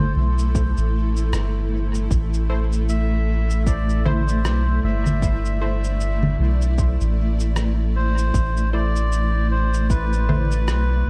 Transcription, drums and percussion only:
0.00 low conga
0.39 cabasa
0.55 kick, cabasa
0.77 cabasa
1.17 cabasa
1.33 cross-stick, cabasa
1.95 cabasa
2.11 kick, cabasa
2.34 cabasa
2.73 cabasa
2.89 cabasa
3.50 cabasa
3.67 kick, cabasa
3.89 cabasa
4.06 low conga
4.28 cabasa
4.45 cross-stick, cabasa
5.06 low conga, cabasa
5.22 kick, cabasa
5.45 cabasa
5.84 cabasa
6.00 cabasa
6.23 low conga
6.62 cabasa
6.78 kick, cabasa
7.01 cabasa
7.40 cabasa
7.56 cross-stick, cabasa
8.18 cabasa
8.34 kick, cabasa
8.57 cabasa
8.96 cabasa
9.12 cabasa
9.74 cabasa
9.90 kick, cabasa
10.13 cabasa
10.29 low conga
10.52 cabasa
10.68 cross-stick, cabasa

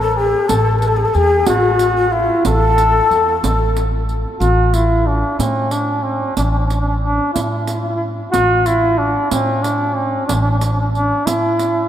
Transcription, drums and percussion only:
0.49 riq
0.82 riq
1.14 riq
1.46 riq
1.79 riq
2.45 riq
2.78 riq
3.11 riq
3.44 riq
3.77 riq
4.09 riq
4.41 riq
4.74 riq
5.40 riq
5.71 riq
6.37 riq
6.70 riq
7.36 riq
7.67 riq
8.34 riq
8.66 riq
9.31 riq
9.64 riq
10.29 riq
10.61 riq
10.95 riq
11.27 riq
11.59 riq

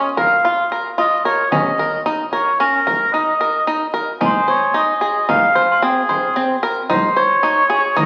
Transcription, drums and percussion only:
0.17 frame drum
0.98 frame drum
1.52 frame drum
1.80 frame drum
2.06 frame drum
2.87 frame drum
3.94 frame drum
4.22 frame drum
5.29 frame drum
5.56 frame drum
6.11 frame drum
6.90 frame drum
7.97 frame drum

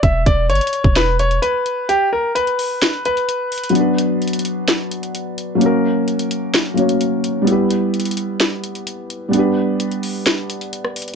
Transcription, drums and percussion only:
0.03 kick, closed hi-hat
0.26 kick, closed hi-hat
0.50 closed hi-hat
0.55 closed hi-hat
0.61 closed hi-hat
0.67 closed hi-hat
0.73 closed hi-hat
0.84 kick
0.96 snare, closed hi-hat
1.19 closed hi-hat
1.31 closed hi-hat
1.43 closed hi-hat
1.66 closed hi-hat
1.89 closed hi-hat
2.36 closed hi-hat
2.47 closed hi-hat
2.59 open hi-hat
2.82 snare, closed hi-hat
3.05 closed hi-hat
3.17 closed hi-hat
3.29 closed hi-hat
3.52 closed hi-hat, open hi-hat
3.58 closed hi-hat
3.64 closed hi-hat
3.69 closed hi-hat
3.75 closed hi-hat
3.98 closed hi-hat
4.22 closed hi-hat
4.28 closed hi-hat
4.33 closed hi-hat
4.39 closed hi-hat
4.45 closed hi-hat
4.68 snare, closed hi-hat
4.91 closed hi-hat
5.03 closed hi-hat
5.15 closed hi-hat
5.38 closed hi-hat
5.61 closed hi-hat
6.08 closed hi-hat
6.19 closed hi-hat
6.31 closed hi-hat
6.54 snare, closed hi-hat
6.77 closed hi-hat
6.89 closed hi-hat
7.01 closed hi-hat
7.24 closed hi-hat
7.47 closed hi-hat
7.70 closed hi-hat
7.94 closed hi-hat
8.00 closed hi-hat
8.05 closed hi-hat
8.11 closed hi-hat
8.17 closed hi-hat
8.40 snare, closed hi-hat
8.64 closed hi-hat
8.75 closed hi-hat
8.87 closed hi-hat
9.10 closed hi-hat
9.33 closed hi-hat
9.80 closed hi-hat
9.91 closed hi-hat
10.03 open hi-hat
10.26 snare, closed hi-hat
10.50 closed hi-hat
10.61 closed hi-hat
10.73 closed hi-hat
10.85 cross-stick
10.96 closed hi-hat, open hi-hat
11.02 closed hi-hat
11.08 closed hi-hat

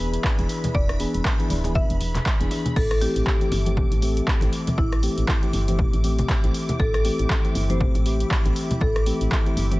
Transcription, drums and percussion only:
0.14 closed hi-hat
0.24 kick, clap
0.39 closed hi-hat, muted conga
0.49 open hi-hat
0.63 closed hi-hat, high conga, low conga
0.74 kick, muted conga
0.89 cross-stick, closed hi-hat
1.00 open hi-hat
1.14 closed hi-hat
1.25 kick, cross-stick, clap, muted conga
1.40 closed hi-hat
1.50 open hi-hat
1.64 closed hi-hat, muted conga, high conga
1.75 kick, low conga
1.90 closed hi-hat
2.01 open hi-hat, high conga
2.14 clap, closed hi-hat, muted conga, low conga
2.26 kick, clap, open hi-hat
2.41 closed hi-hat
2.51 open hi-hat, muted conga
2.65 closed hi-hat, low conga
2.76 kick, crash
2.91 cross-stick, closed hi-hat
3.01 open hi-hat
3.16 closed hi-hat, muted conga
3.27 kick, cross-stick, clap
3.41 closed hi-hat
3.52 open hi-hat, muted conga
3.66 closed hi-hat, high conga
3.77 kick, low conga
3.92 closed hi-hat
4.02 open hi-hat, muted conga
4.17 closed hi-hat
4.27 kick, clap
4.41 closed hi-hat, muted conga
4.53 open hi-hat
4.67 closed hi-hat, high conga, low conga
4.78 kick
4.92 cross-stick, closed hi-hat, muted conga
5.03 open hi-hat
5.18 closed hi-hat
5.28 kick, cross-stick, clap, muted conga
5.43 closed hi-hat
5.53 open hi-hat
5.68 closed hi-hat, high conga
5.79 kick, muted conga, low conga
5.93 closed hi-hat
6.04 open hi-hat, high conga
6.18 closed hi-hat, muted conga, low conga
6.29 kick, clap, open hi-hat
6.44 closed hi-hat
6.54 open hi-hat
6.69 closed hi-hat, muted conga, low conga
6.80 kick
6.94 cross-stick, closed hi-hat
7.05 open hi-hat, muted conga
7.19 closed hi-hat
7.30 kick, cross-stick, clap
7.45 closed hi-hat
7.55 open hi-hat, muted conga
7.69 closed hi-hat, high conga
7.80 kick, low conga
7.95 closed hi-hat, muted conga
8.06 open hi-hat
8.20 closed hi-hat
8.31 kick, clap
8.45 closed hi-hat, muted conga
8.56 open hi-hat
8.71 closed hi-hat, high conga, low conga
8.81 kick, muted conga
8.96 cross-stick, closed hi-hat
9.06 open hi-hat
9.21 closed hi-hat
9.31 kick, cross-stick, clap, muted conga
9.46 closed hi-hat
9.57 open hi-hat
9.71 closed hi-hat, muted conga, high conga

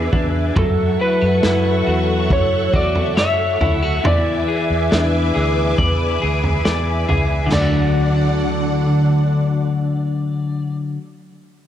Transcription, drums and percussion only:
0.13 kick, floor tom
0.56 kick, floor tom
1.43 snare
2.30 kick, floor tom
2.74 kick
2.95 floor tom
3.17 snare
3.61 floor tom
4.05 floor tom
4.92 snare
5.78 kick, floor tom
6.44 floor tom
6.65 snare
7.09 floor tom
7.52 snare, floor tom, crash

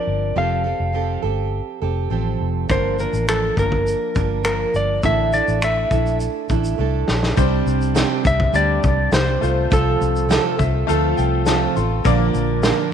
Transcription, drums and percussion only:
2.70 kick, shaker
2.99 shaker
3.14 shaker
3.29 finger snap, shaker
3.57 kick, shaker
3.72 kick
3.87 shaker
4.15 kick, shaker
4.45 finger snap, shaker
4.74 shaker
5.03 kick, shaker
5.33 shaker
5.48 shaker
5.62 finger snap, shaker
5.91 kick, shaker
6.07 shaker
6.20 shaker
6.49 kick, shaker
6.64 shaker
7.08 snare
7.23 snare
7.37 kick, shaker
7.67 shaker
7.82 shaker
7.96 snare, shaker
8.25 kick, shaker
8.40 kick
8.54 shaker
8.83 kick, shaker
9.13 snare, shaker
9.43 shaker
9.72 kick, shaker
10.02 shaker
10.16 shaker
10.31 snare, shaker
10.59 kick, shaker
10.89 shaker
11.18 shaker
11.46 snare, shaker
11.77 shaker
12.05 kick, shaker
12.35 shaker
12.63 snare, shaker

